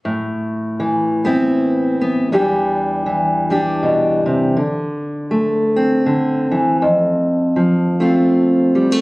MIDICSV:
0, 0, Header, 1, 2, 480
1, 0, Start_track
1, 0, Key_signature, 0, "minor"
1, 0, Tempo, 752823
1, 31, Time_signature, 3, 2, 24, 8
1, 5745, End_track
2, 0, Start_track
2, 0, Title_t, "Steel-string acoustic guitar"
2, 0, Program_c, 0, 25
2, 31, Note_on_c, 0, 45, 52
2, 508, Note_on_c, 0, 52, 48
2, 795, Note_on_c, 0, 59, 45
2, 802, Note_on_c, 0, 60, 47
2, 808, Note_on_c, 0, 64, 53
2, 1271, Note_off_c, 0, 59, 0
2, 1284, Note_on_c, 0, 59, 50
2, 1445, Note_off_c, 0, 52, 0
2, 1453, Note_off_c, 0, 60, 0
2, 1454, Note_off_c, 0, 59, 0
2, 1471, Note_off_c, 0, 45, 0
2, 1480, Note_off_c, 0, 64, 0
2, 1480, Note_on_c, 0, 40, 54
2, 1483, Note_on_c, 0, 52, 46
2, 1486, Note_on_c, 0, 55, 48
2, 1492, Note_on_c, 0, 62, 42
2, 1495, Note_on_c, 0, 67, 51
2, 1944, Note_off_c, 0, 52, 0
2, 1952, Note_on_c, 0, 52, 51
2, 2225, Note_off_c, 0, 55, 0
2, 2233, Note_on_c, 0, 55, 48
2, 2235, Note_off_c, 0, 62, 0
2, 2236, Note_off_c, 0, 67, 0
2, 2237, Note_on_c, 0, 62, 45
2, 2243, Note_on_c, 0, 67, 52
2, 2440, Note_on_c, 0, 47, 57
2, 2712, Note_off_c, 0, 47, 0
2, 2714, Note_on_c, 0, 48, 56
2, 2887, Note_off_c, 0, 52, 0
2, 2891, Note_off_c, 0, 62, 0
2, 2894, Note_off_c, 0, 67, 0
2, 2911, Note_on_c, 0, 50, 56
2, 2913, Note_off_c, 0, 55, 0
2, 2914, Note_off_c, 0, 48, 0
2, 2915, Note_off_c, 0, 40, 0
2, 3385, Note_on_c, 0, 57, 54
2, 3675, Note_on_c, 0, 60, 51
2, 3857, Note_off_c, 0, 50, 0
2, 3865, Note_on_c, 0, 50, 55
2, 4145, Note_off_c, 0, 50, 0
2, 4153, Note_on_c, 0, 52, 56
2, 4348, Note_on_c, 0, 41, 60
2, 4353, Note_off_c, 0, 52, 0
2, 4821, Note_on_c, 0, 53, 52
2, 5098, Note_off_c, 0, 57, 0
2, 5100, Note_on_c, 0, 57, 48
2, 5101, Note_off_c, 0, 60, 0
2, 5103, Note_on_c, 0, 60, 53
2, 5109, Note_on_c, 0, 65, 58
2, 5577, Note_off_c, 0, 57, 0
2, 5579, Note_on_c, 0, 55, 52
2, 5687, Note_off_c, 0, 55, 0
2, 5687, Note_on_c, 0, 57, 44
2, 5741, Note_off_c, 0, 65, 0
2, 5745, Note_off_c, 0, 41, 0
2, 5745, Note_off_c, 0, 53, 0
2, 5745, Note_off_c, 0, 57, 0
2, 5745, Note_off_c, 0, 60, 0
2, 5745, End_track
0, 0, End_of_file